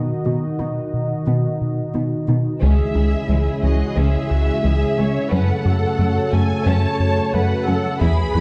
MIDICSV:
0, 0, Header, 1, 10, 480
1, 0, Start_track
1, 0, Key_signature, 4, "minor"
1, 0, Tempo, 674157
1, 1865, Time_signature, 4, 2, 24, 8
1, 5984, End_track
2, 0, Start_track
2, 0, Title_t, "Violin section"
2, 0, Program_c, 0, 48
2, 1858, Note_on_c, 0, 76, 54
2, 2553, Note_off_c, 0, 76, 0
2, 2588, Note_on_c, 0, 75, 49
2, 2821, Note_on_c, 0, 76, 61
2, 2822, Note_off_c, 0, 75, 0
2, 3783, Note_off_c, 0, 76, 0
2, 3786, Note_on_c, 0, 78, 60
2, 4491, Note_off_c, 0, 78, 0
2, 4508, Note_on_c, 0, 80, 65
2, 4746, Note_off_c, 0, 80, 0
2, 4748, Note_on_c, 0, 81, 73
2, 5226, Note_on_c, 0, 78, 63
2, 5227, Note_off_c, 0, 81, 0
2, 5696, Note_off_c, 0, 78, 0
2, 5698, Note_on_c, 0, 83, 77
2, 5984, Note_off_c, 0, 83, 0
2, 5984, End_track
3, 0, Start_track
3, 0, Title_t, "Viola section"
3, 0, Program_c, 1, 48
3, 1864, Note_on_c, 1, 68, 42
3, 2316, Note_off_c, 1, 68, 0
3, 2343, Note_on_c, 1, 64, 39
3, 2584, Note_off_c, 1, 64, 0
3, 2584, Note_on_c, 1, 66, 39
3, 2824, Note_on_c, 1, 68, 41
3, 2825, Note_off_c, 1, 66, 0
3, 3062, Note_on_c, 1, 66, 40
3, 3065, Note_off_c, 1, 68, 0
3, 3304, Note_off_c, 1, 66, 0
3, 3304, Note_on_c, 1, 68, 43
3, 3540, Note_off_c, 1, 68, 0
3, 3544, Note_on_c, 1, 73, 46
3, 3785, Note_off_c, 1, 73, 0
3, 3785, Note_on_c, 1, 71, 48
3, 4025, Note_off_c, 1, 71, 0
3, 4025, Note_on_c, 1, 69, 48
3, 4731, Note_off_c, 1, 69, 0
3, 4743, Note_on_c, 1, 73, 55
3, 5224, Note_off_c, 1, 73, 0
3, 5224, Note_on_c, 1, 71, 54
3, 5464, Note_off_c, 1, 71, 0
3, 5465, Note_on_c, 1, 69, 53
3, 5703, Note_on_c, 1, 68, 52
3, 5705, Note_off_c, 1, 69, 0
3, 5939, Note_off_c, 1, 68, 0
3, 5941, Note_on_c, 1, 71, 48
3, 5984, Note_off_c, 1, 71, 0
3, 5984, End_track
4, 0, Start_track
4, 0, Title_t, "Analog synth pad"
4, 0, Program_c, 2, 89
4, 0, Note_on_c, 2, 51, 46
4, 0, Note_on_c, 2, 63, 51
4, 0, Note_on_c, 2, 66, 47
4, 0, Note_on_c, 2, 75, 49
4, 1837, Note_off_c, 2, 75, 0
4, 1838, Note_off_c, 2, 63, 0
4, 1864, Note_on_c, 2, 61, 51
4, 1864, Note_on_c, 2, 64, 49
4, 1865, Note_on_c, 2, 56, 47
4, 1865, Note_on_c, 2, 68, 49
4, 1866, Note_off_c, 2, 51, 0
4, 1866, Note_off_c, 2, 66, 0
4, 3756, Note_off_c, 2, 64, 0
4, 3757, Note_off_c, 2, 56, 0
4, 3757, Note_off_c, 2, 68, 0
4, 3785, Note_on_c, 2, 73, 53
4, 3786, Note_on_c, 2, 57, 52
4, 3786, Note_on_c, 2, 66, 49
4, 5676, Note_off_c, 2, 61, 0
4, 5705, Note_off_c, 2, 57, 0
4, 5705, Note_off_c, 2, 73, 0
4, 5705, Note_on_c, 2, 68, 52
4, 5706, Note_off_c, 2, 66, 0
4, 5708, Note_on_c, 2, 59, 56
4, 5709, Note_on_c, 2, 64, 52
4, 5709, Note_on_c, 2, 71, 53
4, 5984, Note_off_c, 2, 59, 0
4, 5984, Note_off_c, 2, 64, 0
4, 5984, Note_off_c, 2, 68, 0
4, 5984, Note_off_c, 2, 71, 0
4, 5984, End_track
5, 0, Start_track
5, 0, Title_t, "Violin section"
5, 0, Program_c, 3, 48
5, 1866, Note_on_c, 3, 61, 40
5, 1866, Note_on_c, 3, 68, 38
5, 2089, Note_off_c, 3, 61, 0
5, 2104, Note_on_c, 3, 61, 28
5, 2161, Note_off_c, 3, 61, 0
5, 2351, Note_on_c, 3, 56, 31
5, 2408, Note_off_c, 3, 56, 0
5, 2584, Note_on_c, 3, 61, 36
5, 2641, Note_off_c, 3, 61, 0
5, 2822, Note_on_c, 3, 61, 41
5, 3047, Note_off_c, 3, 61, 0
5, 3298, Note_on_c, 3, 56, 36
5, 3355, Note_off_c, 3, 56, 0
5, 3541, Note_on_c, 3, 61, 36
5, 3598, Note_off_c, 3, 61, 0
5, 3757, Note_off_c, 3, 68, 0
5, 3778, Note_on_c, 3, 61, 48
5, 3779, Note_on_c, 3, 69, 46
5, 4005, Note_off_c, 3, 61, 0
5, 4022, Note_on_c, 3, 61, 34
5, 4079, Note_off_c, 3, 61, 0
5, 4262, Note_on_c, 3, 57, 33
5, 4319, Note_off_c, 3, 57, 0
5, 4504, Note_on_c, 3, 61, 42
5, 4561, Note_off_c, 3, 61, 0
5, 4740, Note_on_c, 3, 61, 48
5, 4966, Note_off_c, 3, 61, 0
5, 5223, Note_on_c, 3, 57, 41
5, 5280, Note_off_c, 3, 57, 0
5, 5459, Note_on_c, 3, 61, 41
5, 5516, Note_off_c, 3, 61, 0
5, 5674, Note_off_c, 3, 69, 0
5, 5695, Note_on_c, 3, 68, 51
5, 5697, Note_on_c, 3, 64, 51
5, 5924, Note_off_c, 3, 64, 0
5, 5940, Note_on_c, 3, 64, 39
5, 5984, Note_off_c, 3, 64, 0
5, 5984, Note_off_c, 3, 68, 0
5, 5984, End_track
6, 0, Start_track
6, 0, Title_t, "Synth pluck"
6, 0, Program_c, 4, 84
6, 0, Note_on_c, 4, 59, 64
6, 89, Note_off_c, 4, 59, 0
6, 183, Note_on_c, 4, 66, 47
6, 328, Note_off_c, 4, 66, 0
6, 420, Note_on_c, 4, 63, 50
6, 566, Note_off_c, 4, 63, 0
6, 906, Note_on_c, 4, 59, 56
6, 1050, Note_off_c, 4, 59, 0
6, 1386, Note_on_c, 4, 63, 42
6, 1530, Note_off_c, 4, 63, 0
6, 1626, Note_on_c, 4, 63, 45
6, 1770, Note_off_c, 4, 63, 0
6, 1865, Note_on_c, 4, 49, 69
6, 2009, Note_off_c, 4, 49, 0
6, 2103, Note_on_c, 4, 61, 48
6, 2248, Note_off_c, 4, 61, 0
6, 2345, Note_on_c, 4, 52, 49
6, 2489, Note_off_c, 4, 52, 0
6, 2584, Note_on_c, 4, 52, 49
6, 2729, Note_off_c, 4, 52, 0
6, 2824, Note_on_c, 4, 49, 63
6, 2969, Note_off_c, 4, 49, 0
6, 3303, Note_on_c, 4, 52, 48
6, 3448, Note_off_c, 4, 52, 0
6, 3549, Note_on_c, 4, 56, 50
6, 3692, Note_off_c, 4, 56, 0
6, 3789, Note_on_c, 4, 54, 74
6, 3932, Note_off_c, 4, 54, 0
6, 4027, Note_on_c, 4, 66, 49
6, 4171, Note_off_c, 4, 66, 0
6, 4267, Note_on_c, 4, 57, 51
6, 4411, Note_off_c, 4, 57, 0
6, 4507, Note_on_c, 4, 57, 56
6, 4651, Note_off_c, 4, 57, 0
6, 4748, Note_on_c, 4, 54, 64
6, 4891, Note_off_c, 4, 54, 0
6, 5224, Note_on_c, 4, 57, 50
6, 5369, Note_off_c, 4, 57, 0
6, 5466, Note_on_c, 4, 61, 46
6, 5609, Note_off_c, 4, 61, 0
6, 5707, Note_on_c, 4, 52, 69
6, 5851, Note_off_c, 4, 52, 0
6, 5949, Note_on_c, 4, 64, 48
6, 5984, Note_off_c, 4, 64, 0
6, 5984, End_track
7, 0, Start_track
7, 0, Title_t, "Trombone section"
7, 0, Program_c, 5, 61
7, 1870, Note_on_c, 5, 49, 37
7, 1871, Note_on_c, 5, 56, 37
7, 3760, Note_off_c, 5, 56, 0
7, 3788, Note_on_c, 5, 57, 42
7, 5678, Note_off_c, 5, 57, 0
7, 5679, Note_off_c, 5, 49, 0
7, 5708, Note_on_c, 5, 52, 50
7, 5709, Note_on_c, 5, 68, 49
7, 5984, Note_off_c, 5, 52, 0
7, 5984, Note_off_c, 5, 68, 0
7, 5984, End_track
8, 0, Start_track
8, 0, Title_t, "Analog synth bass"
8, 0, Program_c, 6, 38
8, 0, Note_on_c, 6, 47, 58
8, 89, Note_off_c, 6, 47, 0
8, 185, Note_on_c, 6, 59, 43
8, 329, Note_off_c, 6, 59, 0
8, 426, Note_on_c, 6, 47, 41
8, 570, Note_off_c, 6, 47, 0
8, 666, Note_on_c, 6, 47, 44
8, 810, Note_off_c, 6, 47, 0
8, 904, Note_on_c, 6, 47, 61
8, 1048, Note_off_c, 6, 47, 0
8, 1149, Note_on_c, 6, 47, 40
8, 1292, Note_off_c, 6, 47, 0
8, 1387, Note_on_c, 6, 47, 41
8, 1530, Note_off_c, 6, 47, 0
8, 1623, Note_on_c, 6, 47, 44
8, 1768, Note_off_c, 6, 47, 0
8, 1866, Note_on_c, 6, 37, 65
8, 2010, Note_off_c, 6, 37, 0
8, 2100, Note_on_c, 6, 37, 49
8, 2246, Note_off_c, 6, 37, 0
8, 2340, Note_on_c, 6, 37, 44
8, 2486, Note_off_c, 6, 37, 0
8, 2584, Note_on_c, 6, 37, 49
8, 2729, Note_off_c, 6, 37, 0
8, 2823, Note_on_c, 6, 37, 63
8, 2967, Note_off_c, 6, 37, 0
8, 3065, Note_on_c, 6, 37, 44
8, 3209, Note_off_c, 6, 37, 0
8, 3306, Note_on_c, 6, 37, 44
8, 3450, Note_off_c, 6, 37, 0
8, 3549, Note_on_c, 6, 49, 45
8, 3692, Note_off_c, 6, 49, 0
8, 3787, Note_on_c, 6, 42, 65
8, 3931, Note_off_c, 6, 42, 0
8, 4024, Note_on_c, 6, 42, 49
8, 4169, Note_off_c, 6, 42, 0
8, 4262, Note_on_c, 6, 42, 44
8, 4407, Note_off_c, 6, 42, 0
8, 4503, Note_on_c, 6, 42, 49
8, 4648, Note_off_c, 6, 42, 0
8, 4742, Note_on_c, 6, 42, 64
8, 4887, Note_off_c, 6, 42, 0
8, 4982, Note_on_c, 6, 42, 46
8, 5127, Note_off_c, 6, 42, 0
8, 5226, Note_on_c, 6, 42, 46
8, 5370, Note_off_c, 6, 42, 0
8, 5466, Note_on_c, 6, 54, 50
8, 5610, Note_off_c, 6, 54, 0
8, 5702, Note_on_c, 6, 40, 67
8, 5847, Note_off_c, 6, 40, 0
8, 5941, Note_on_c, 6, 40, 49
8, 5984, Note_off_c, 6, 40, 0
8, 5984, End_track
9, 0, Start_track
9, 0, Title_t, "Cello section"
9, 0, Program_c, 7, 48
9, 185, Note_on_c, 7, 47, 29
9, 242, Note_off_c, 7, 47, 0
9, 427, Note_on_c, 7, 47, 29
9, 484, Note_off_c, 7, 47, 0
9, 905, Note_on_c, 7, 47, 41
9, 962, Note_off_c, 7, 47, 0
9, 1387, Note_on_c, 7, 47, 29
9, 1444, Note_off_c, 7, 47, 0
9, 1627, Note_on_c, 7, 47, 26
9, 1684, Note_off_c, 7, 47, 0
9, 1865, Note_on_c, 7, 37, 43
9, 1922, Note_off_c, 7, 37, 0
9, 2103, Note_on_c, 7, 37, 34
9, 2160, Note_off_c, 7, 37, 0
9, 2343, Note_on_c, 7, 37, 33
9, 2400, Note_off_c, 7, 37, 0
9, 2581, Note_on_c, 7, 37, 32
9, 2638, Note_off_c, 7, 37, 0
9, 2822, Note_on_c, 7, 37, 47
9, 2879, Note_off_c, 7, 37, 0
9, 3303, Note_on_c, 7, 37, 33
9, 3360, Note_off_c, 7, 37, 0
9, 3542, Note_on_c, 7, 37, 32
9, 3599, Note_off_c, 7, 37, 0
9, 3783, Note_on_c, 7, 42, 49
9, 3840, Note_off_c, 7, 42, 0
9, 4022, Note_on_c, 7, 42, 37
9, 4079, Note_off_c, 7, 42, 0
9, 4258, Note_on_c, 7, 42, 38
9, 4315, Note_off_c, 7, 42, 0
9, 4501, Note_on_c, 7, 42, 37
9, 4558, Note_off_c, 7, 42, 0
9, 4742, Note_on_c, 7, 42, 50
9, 4799, Note_off_c, 7, 42, 0
9, 5222, Note_on_c, 7, 42, 40
9, 5279, Note_off_c, 7, 42, 0
9, 5462, Note_on_c, 7, 42, 39
9, 5519, Note_off_c, 7, 42, 0
9, 5704, Note_on_c, 7, 40, 53
9, 5761, Note_off_c, 7, 40, 0
9, 5947, Note_on_c, 7, 40, 40
9, 5984, Note_off_c, 7, 40, 0
9, 5984, End_track
10, 0, Start_track
10, 0, Title_t, "Taiko and cinematic ensemble drums"
10, 1865, Note_on_c, 9, 41, 41
10, 1937, Note_off_c, 9, 41, 0
10, 5704, Note_on_c, 9, 41, 46
10, 5775, Note_off_c, 9, 41, 0
10, 5984, End_track
0, 0, End_of_file